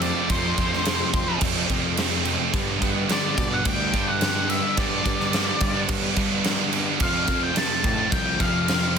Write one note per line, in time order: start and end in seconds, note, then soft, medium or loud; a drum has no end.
0.00 0.12 F2 medium
0.00 0.15 F2 medium
0.00 0.27 F2 medium
0.00 0.28 F2 medium
0.00 0.28 C3 medium
0.00 0.29 F3 medium
0.00 0.16 F3 medium
0.00 0.15 A3 medium
0.00 0.14 C4 medium
0.00 0.31 D5 medium
0.00 crash medium
0.15 0.29 F3 medium
0.15 0.30 A3 medium
0.15 0.30 C4 medium
0.29 1.40 F2 loud
0.29 0.71 F2 loud
0.29 0.52 F2 loud
0.29 0.44 C3 medium
0.29 1.40 C3 medium
0.29 0.44 F3 medium
0.29 1.41 F3 loud
0.29 0.43 A3 loud
0.29 0.43 C4 loud
0.29 1.38 C5 medium
0.29 kick loud
0.29 crash medium
0.44 muted distorted electric guitar stroke medium
0.57 1.02 F2 loud
0.57 0.85 C3 medium
0.57 0.85 F3 medium
0.57 0.85 A3 medium
0.57 0.86 C4 medium
0.57 kick medium
0.57 crash medium
0.72 0.86 F3 medium
0.72 0.86 A3 medium
0.72 0.87 C4 medium
0.72 snare soft
0.85 1.42 F2 loud
0.85 1.12 C3 medium
0.85 1.13 F3 medium
0.85 1.13 A3 loud
0.85 1.14 C4 medium
0.85 snare loud
0.85 crash medium
0.99 1.12 F3 medium
0.99 1.12 A3 medium
0.99 1.12 C4 medium
1.13 1.36 F2 medium
1.13 1.27 C3 medium
1.13 1.26 F3 medium
1.13 1.26 A3 medium
1.13 1.26 C4 medium
1.13 muted overdriven electric guitar stroke medium
1.13 kick loud
1.13 crash medium
1.27 1.69 F3 soft
1.27 1.70 A3 medium
1.27 1.70 C4 medium
1.27 muted distorted electric guitar stroke medium
1.41 2.52 F2 medium
1.41 1.64 F2 loud
1.41 2.53 C3 medium
1.41 2.53 F3 medium
1.41 kick loud
1.41 crash loud
1.54 1.68 F3 medium
1.54 1.69 A3 medium
1.54 1.69 C4 medium
1.68 2.35 F2 loud
1.68 2.11 C3 medium
1.68 2.10 F3 medium
1.68 2.10 A3 medium
1.68 2.09 C4 medium
1.68 kick medium
1.68 crash medium
1.97 2.39 F2 medium
1.97 2.23 C3 loud
1.97 2.11 F3 loud
1.97 2.11 A3 loud
1.97 2.09 C4 loud
1.97 snare loud
1.97 crash loud
2.10 2.52 F2 medium
2.10 2.23 C3 medium
2.10 2.24 F3 medium
2.10 2.25 A3 medium
2.10 2.25 C4 medium
2.24 2.51 C3 medium
2.24 2.39 F3 medium
2.24 2.38 A3 medium
2.24 2.37 C4 medium
2.24 crash medium
2.38 2.52 F3 medium
2.38 2.52 A3 medium
2.38 2.51 C4 medium
2.52 3.08 G2 loud
2.52 3.65 G2 loud
2.52 2.75 G2 loud
2.52 2.66 D3 loud
2.52 3.64 D3 medium
2.52 2.67 G3 loud
2.52 2.67 B3 loud
2.52 2.66 D4 loud
2.52 kick loud
2.52 crash medium
2.56 3.68 G3 loud
2.67 muted distorted electric guitar stroke medium
2.80 3.04 G2 loud
2.80 3.08 D3 medium
2.80 3.09 G3 medium
2.80 3.10 B3 medium
2.80 3.10 D4 medium
2.80 kick medium
2.80 crash medium
2.94 3.09 G3 medium
2.94 3.09 B3 medium
2.94 3.10 D4 medium
3.08 4.36 G2 medium
3.08 3.35 D3 medium
3.08 3.37 G3 medium
3.08 3.37 B3 loud
3.08 3.38 D4 loud
3.08 snare loud
3.08 crash medium
3.12 3.54 D5 medium
3.22 3.37 G3 medium
3.22 3.37 B3 medium
3.22 3.38 D4 medium
3.36 3.59 B2 medium
3.36 3.50 D3 medium
3.36 3.50 G3 medium
3.36 3.50 B3 medium
3.36 3.50 D4 medium
3.36 muted overdriven electric guitar stroke medium
3.36 kick loud
3.36 crash medium
3.50 3.93 G3 medium
3.50 3.93 B3 medium
3.50 3.94 D4 medium
3.50 3.66 F#5 loud
3.50 muted distorted electric guitar stroke medium
3.65 3.94 D2 loud
3.65 4.75 G2 medium
3.65 4.76 D3 medium
3.65 4.77 G3 medium
3.65 4.08 G5 loud
3.65 kick loud
3.65 crash medium
3.78 3.92 G3 medium
3.78 3.92 B3 medium
3.78 3.93 D4 medium
3.92 4.59 G2 loud
3.92 4.35 D3 medium
3.92 4.34 G3 medium
3.92 4.34 B3 medium
3.92 4.33 D4 medium
3.92 kick medium
3.92 crash medium
4.09 4.47 F#5 loud
4.21 4.63 G2 loud
4.21 4.47 D3 loud
4.21 4.35 G3 loud
4.21 4.34 B3 loud
4.21 4.34 D4 loud
4.21 snare loud
4.21 crash medium
4.34 4.75 G2 medium
4.34 4.47 D3 medium
4.34 4.48 G3 medium
4.34 4.49 B3 medium
4.34 4.49 D4 loud
4.48 4.76 D3 medium
4.48 4.63 G3 medium
4.48 4.62 B3 medium
4.48 4.61 D4 medium
4.48 4.78 E5 loud
4.48 crash medium
4.62 4.77 G3 medium
4.62 4.77 B3 medium
4.62 4.78 D4 medium
4.77 5.19 G2 loud
4.77 5.87 G2 medium
4.77 4.99 G2 medium
4.77 4.91 D3 loud
4.77 5.88 D3 loud
4.77 4.91 G3 loud
4.77 4.90 B3 loud
4.77 4.90 D4 loud
4.77 5.86 D5 medium
4.77 kick loud
4.77 crash medium
4.81 5.89 G3 loud
4.91 muted distorted electric guitar stroke medium
5.04 5.49 G2 loud
5.04 5.32 D3 medium
5.04 5.33 G3 medium
5.04 5.33 B3 medium
5.04 5.34 D4 medium
5.04 kick medium
5.04 crash medium
5.19 5.33 G3 medium
5.19 5.33 B3 medium
5.19 5.34 D4 medium
5.19 snare soft
5.33 5.89 G2 medium
5.33 5.59 D3 medium
5.33 5.60 G3 medium
5.33 5.61 B3 loud
5.33 5.62 D4 loud
5.33 snare loud
5.33 crash medium
5.46 5.60 G3 soft
5.46 5.60 B3 medium
5.46 5.60 D4 medium
5.61 5.83 G2 medium
5.61 5.75 D3 medium
5.61 5.75 G3 medium
5.61 5.75 B3 medium
5.61 5.75 D4 medium
5.61 muted overdriven electric guitar stroke medium
5.61 kick medium
5.61 crash medium
5.74 6.15 G3 medium
5.74 6.15 B3 medium
5.74 6.16 D4 medium
5.74 muted distorted electric guitar stroke medium
5.88 6.98 G2 medium
5.88 6.11 G2 loud
5.88 6.99 D3 medium
5.88 7.00 G3 loud
5.88 kick loud
5.88 crash loud
6.02 6.15 G3 medium
6.02 6.16 B3 medium
6.02 6.17 D4 medium
6.16 6.82 G2 medium
6.16 6.58 D3 medium
6.16 6.57 G3 medium
6.16 6.56 B3 medium
6.16 6.56 D4 medium
6.16 kick medium
6.16 crash medium
6.43 6.86 G2 loud
6.43 6.71 D3 loud
6.43 6.58 G3 medium
6.43 6.57 B3 loud
6.43 6.56 D4 loud
6.43 snare loud
6.43 crash medium
6.57 6.98 G2 medium
6.57 6.70 D3 medium
6.57 6.71 G3 medium
6.57 6.72 B3 loud
6.57 6.72 D4 medium
6.71 6.98 D3 medium
6.71 6.86 G3 medium
6.71 6.85 B3 medium
6.71 6.83 D4 loud
6.71 crash medium
6.85 6.99 G3 medium
6.85 6.99 B3 medium
6.85 6.98 D4 medium
6.98 7.54 F2 medium
6.98 8.10 F2 loud
6.98 7.22 F2 medium
6.98 7.12 C3 loud
6.98 8.11 C3 medium
6.98 7.13 F3 loud
6.98 7.13 A3 loud
6.98 7.12 C4 loud
6.98 kick loud
6.98 crash medium
7.03 8.14 F3 loud
7.03 7.40 F5 loud
7.13 muted distorted electric guitar stroke medium
7.27 7.50 F2 loud
7.27 7.55 C3 medium
7.27 7.57 F3 medium
7.27 7.57 A3 medium
7.27 7.58 C4 loud
7.27 kick medium
7.27 crash medium
7.40 7.55 F3 medium
7.40 7.56 A3 medium
7.40 7.56 C4 medium
7.40 7.57 G5 loud
7.54 8.82 F2 medium
7.54 7.81 C3 medium
7.54 7.83 F3 medium
7.54 7.83 A3 loud
7.54 7.84 C4 medium
7.54 7.85 A5 loud
7.54 snare loud
7.54 crash loud
7.70 7.83 F3 medium
7.70 7.83 A3 medium
7.70 7.84 C4 medium
7.82 8.06 A2 medium
7.82 7.97 C3 medium
7.82 7.96 F3 medium
7.82 7.96 A3 medium
7.82 7.96 C4 medium
7.82 muted overdriven electric guitar stroke medium
7.82 kick loud
7.82 crash medium
7.86 8.12 A5 loud
7.97 8.38 F3 medium
7.97 8.39 A3 medium
7.97 8.39 C4 medium
7.97 muted distorted electric guitar stroke medium
8.11 8.40 C2 loud
8.11 8.98 F2 medium
8.11 8.98 C3 medium
8.11 8.98 F3 medium
8.11 8.41 G5 loud
8.11 kick loud
8.11 crash medium
8.24 8.38 F3 medium
8.24 8.38 A3 medium
8.24 8.39 C4 medium
8.38 8.98 F2 medium
8.38 8.81 C3 medium
8.38 8.81 F3 medium
8.38 8.80 A3 medium
8.38 8.79 C4 medium
8.38 8.66 F5 loud
8.38 kick medium
8.38 crash medium
8.67 8.98 F2 loud
8.67 8.93 C3 loud
8.67 8.82 F3 loud
8.67 8.81 A3 loud
8.67 8.80 C4 loud
8.67 8.96 F5 loud
8.67 snare loud
8.67 crash medium
8.80 8.98 F2 medium
8.80 8.93 C3 medium
8.80 8.94 F3 medium
8.80 8.95 A3 medium
8.80 8.95 C4 medium
8.94 8.98 C3 medium
8.94 8.98 F3 medium